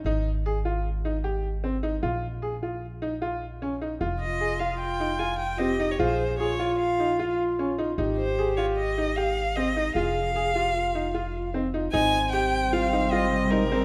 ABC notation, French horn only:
X:1
M:5/4
L:1/8
Q:1/4=151
K:Ab
V:1 name="French horn"
z8 z2 | z8 z2 | F8 G2 | A2 F8 |
G8- G z | A2 A G F4 E F | C8- C2 |]